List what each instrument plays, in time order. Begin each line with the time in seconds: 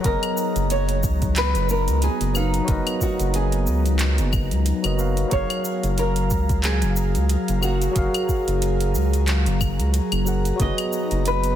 Already playing: analog synth pad F#3 A#5
0.01 analog synth bass F#1, tine electric piano F#3 F#4 G#4, kick, closed hi-hat, cabasa
0.05 analog synth pad B3 D#4, tine electric piano B3 D#5, nylon-string guitar A#4
0.23 closed hi-hat, cabasa, claves
0.37 cabasa
0.56 analog synth bass F#1, closed hi-hat, cabasa
0.70 nylon-string guitar C#5, closed hi-hat, cabasa
0.89 closed hi-hat, cabasa
1.03 analog synth bass C#2, kick, cabasa
1.22 kick, closed hi-hat, cabasa
1.36 nylon-string guitar B4, clap, closed hi-hat, cabasa
1.55 analog synth bass F#1, closed hi-hat, cabasa
1.69 nylon-string guitar A#4, cabasa
1.88 analog synth bass C#2, closed hi-hat, cabasa
2.02 nylon-string guitar G#4, closed hi-hat, cabasa
2.21 analog synth bass F#1, closed hi-hat, cabasa
2.33 tine electric piano F#3 F#4 A#4 B4 F5, nylon-string guitar D#4, cabasa, claves
2.54 closed hi-hat, cabasa
2.64 analog synth bass F#1, tine electric piano F#3 F#4 A#4, kick, closed hi-hat, cabasa
2.69 tine electric piano B4 D#5
2.87 closed hi-hat, cabasa, claves
3.01 nylon-string guitar F#4, kick, cabasa
3.19 analog synth bass F#1, closed hi-hat, cabasa
3.34 nylon-string guitar G#4, closed hi-hat, cabasa
3.52 closed hi-hat, cabasa
3.67 analog synth bass C#2, cabasa
3.86 closed hi-hat, cabasa
3.99 clap, closed hi-hat, cabasa
4.18 analog synth bass F#1, closed hi-hat, cabasa
4.33 kick, cabasa, claves
4.51 analog synth bass C#2, closed hi-hat, cabasa
4.66 closed hi-hat, cabasa
4.83 analog synth bass F#1, tine electric piano F#3 F#4 A#4 B4 D#5, closed hi-hat, cabasa, claves
4.97 tine electric piano F#3 F#4 A#4 B4 F5, cabasa
5.17 closed hi-hat, cabasa
5.28 tine electric piano F#3 F#4 G#4, analog synth pad F#3 G#4 F5, closed hi-hat, cabasa
5.32 analog synth bass F#1, tine electric piano A#4 F5, nylon-string guitar C#5, analog synth pad A#5, kick
5.50 closed hi-hat, cabasa, claves
5.65 cabasa
5.83 analog synth bass F#1, closed hi-hat, cabasa
5.98 nylon-string guitar A#4, closed hi-hat, cabasa
6.16 closed hi-hat, cabasa
6.31 analog synth bass C#2, kick, cabasa
6.49 kick, closed hi-hat, cabasa
6.64 nylon-string guitar G#4, clap, closed hi-hat, cabasa
6.82 analog synth bass F#1, closed hi-hat, cabasa
6.96 cabasa
7.15 analog synth bass C#2, closed hi-hat, cabasa
7.29 closed hi-hat, cabasa
7.48 analog synth bass F#1, closed hi-hat, cabasa
7.60 tine electric piano F#3 F#4 G#4 A#4 F#5, cabasa, claves
7.64 nylon-string guitar F#4
7.82 closed hi-hat, cabasa
7.92 tine electric piano F#3 F#4 G#4
7.96 analog synth bass F#1, tine electric piano A#4 F5, kick, closed hi-hat, cabasa
8.14 closed hi-hat, cabasa, claves
8.29 kick, cabasa
8.48 analog synth bass F#1, closed hi-hat, cabasa
8.62 closed hi-hat, cabasa
8.80 closed hi-hat, cabasa
8.95 analog synth bass C#2, cabasa
9.13 closed hi-hat, cabasa
9.28 clap, closed hi-hat, cabasa
9.46 analog synth bass F#1, closed hi-hat, cabasa
9.61 kick, cabasa, claves
9.79 analog synth bass C#2, closed hi-hat, cabasa
9.94 closed hi-hat, cabasa
10.12 analog synth bass F#1, closed hi-hat, cabasa, claves
10.25 tine electric piano F#3 F#4 G#4 A#4 F#5, cabasa
10.45 closed hi-hat, cabasa
10.56 tine electric piano F#3 F#4 G#4, analog synth pad B3 D#4, closed hi-hat
10.60 analog synth bass F#1, tine electric piano B4 D#5, nylon-string guitar D#5, kick, cabasa
10.78 closed hi-hat, cabasa, claves
10.93 cabasa
11.11 analog synth bass F#1, closed hi-hat, cabasa
11.26 nylon-string guitar B4, closed hi-hat, cabasa
11.44 closed hi-hat, cabasa